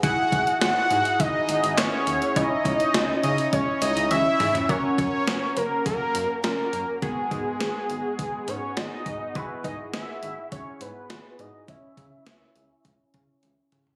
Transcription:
<<
  \new Staff \with { instrumentName = "Analog synth lead" } { \time 4/4 \key e \lydian \tempo 4 = 103 fis''4 fis''4 dis''4 cis''4 | dis''4. dis''8 cis''8 dis''8 e''4 | cis''8 cis''4 ais'8 ais'4 ais'4 | gis'2~ gis'8 cis''8 dis''4 |
b'8 dis''8 e''4 cis''8 b'4 dis''8 | e''2. r4 | }
  \new Staff \with { instrumentName = "Analog polysynth" } { \time 4/4 \key e \lydian <e' fis' gis'>1 | <cis' e' cis''>1 | <cis' fis' ais'>1 | <b fis' gis'>1 |
<e' fis' gis'>1 | <cis' e' cis''>1 | }
  \new Staff \with { instrumentName = "Analog synth bass" } { \clef bass \time 4/4 \key e \lydian gis,,16 r16 gis,,16 r16 gis,,16 r16 gis,16 r16 gis,,16 r16 gis,,16 gis,,16 gis,,16 r16 dis,16 r16 | cis,16 r16 cis,16 r16 cis,16 r16 cis16 r16 cis,16 r16 cis,16 cis,16 cis,16 r16 gis,16 r16 | fis,,16 r16 fis,16 r16 fis,,16 r16 fis,,16 r16 fis,,16 r16 fis,16 r16 fis,,16 r16 fis,16 r16 | gis,,16 r16 gis,16 r16 gis,,16 r16 gis,,16 r16 gis,,16 r16 gis,16 r16 gis,,16 r16 gis,16 r16 |
gis,,16 r16 gis,16 r16 gis,,16 r16 gis,,16 r16 gis,,16 r16 gis,16 r16 gis,,16 r16 gis,16 r16 | cis,16 r16 cis16 r16 cis,16 r16 cis,16 r16 cis,16 r16 cis16 r16 cis,16 r16 cis16 r16 | }
  \new DrumStaff \with { instrumentName = "Drums" } \drummode { \time 4/4 <hh bd>8 <hh bd>16 hh16 <hh sn>8 hh16 hh16 <hh bd>8 hh16 hh16 <hc hh sn>8 hh16 hh16 | <hh bd>8 <hh bd>16 hh16 <hh sn>8 hh16 hh16 <hh bd>8 hh16 hh16 <hh tommh>8 <hho toml>16 <hh tomfh>16 | <hh bd>8 <hh bd>8 <hh sn>8 hh8 <hh bd>8 hh8 <hh sn>8 hh8 | <hh bd>8 <hh bd>8 <hh sn>8 hh8 <hh bd>8 hh8 <hh sn>8 <hh bd>8 |
<hh bd>8 <hh bd>8 <hh sn>8 hh8 <hh bd>8 hh8 <hh sn>8 hh8 | <hh bd>8 <hh bd>8 <hh sn>8 hh8 <hh bd>8 <hh bd>8 <hh tommh>8 <hh toml>16 tomfh16 | }
>>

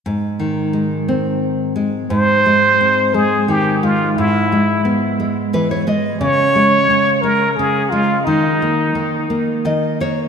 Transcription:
<<
  \new Staff \with { instrumentName = "Muted trumpet" } { \time 6/8 \key aes \major \tempo 4. = 58 r2. | c''4. aes'8 g'8 f'8 | e'4 r2 | des''4. bes'8 aes'8 f'8 |
ees'4 r2 | }
  \new Staff \with { instrumentName = "Nylon-string guitar" } { \clef bass \time 6/8 \key aes \major << { r2. | r2. | r2 b'16 des''16 ees''8 | r2. |
r2 ees''8 des''8 | } \\ { aes,8 ees8 aes8 c'4 aes8 | aes,8 aes8 c'8 aes8 ees8 aes8 | gis,8 gis8 b8 gis8 e8 gis8 | des8 aes8 des8 aes8 des8 aes8 |
ees8 bes8 ees8 bes8 ees8 bes8 | } >> }
>>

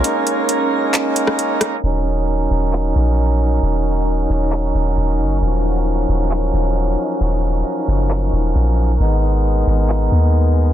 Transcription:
<<
  \new Staff \with { instrumentName = "Synth texture" } { \time 4/4 \key ees \minor \tempo 4 = 134 <des' bes' aes''>1 | <ees' des'' ges''>1~ | <ees' des'' ges''>1~ | <ees' des'' ges''>1~ |
<ees' des'' ges''>1 | <ces' bes' aes''>1 | }
  \new Staff \with { instrumentName = "Accordion" } { \time 4/4 \key ees \minor << { <bes bes'>1 | bes'1~ | bes'1~ | bes'1~ |
bes'1~ | bes'1 | } \\ { ees'1 | ees'1~ | ees'1 | f1~ |
f1 | ees'1 | } >> }
  \new Staff \with { instrumentName = "Accordion" } { \time 4/4 \key ees \minor <aes des'>1 | <ges des'>1~ | <ges des'>1~ | <ges des'>1~ |
<ges des'>1 | <aes ces'>1 | }
  \new Staff \with { instrumentName = "808-style bass" } { \clef bass \time 4/4 \key ees \minor r1 | ees,,4. ees,,4 bes,,4. | ees,,4. ees,,4 ees,,8 ees,,8 ges,,8 | ees,,4. ees,,4 ees,,4 r8 |
ees,,4 r8 ges,,4 ees,,8 bes,,4 | aes,,4. aes,,4 ees,4. | }
  \new DrumStaff \with { instrumentName = "Drums" } \drummode { \time 4/4 hh8 hh8 hh4 <hc hh>8 hh16 ss16 hh8 <hh ss>8 | r4 r4 hc4 r4 | r4 r4 hc4 r4 | r4 r4 hc4 r4 |
r4 r4 hc4 r4 | r4 r4 hc4 r4 | }
>>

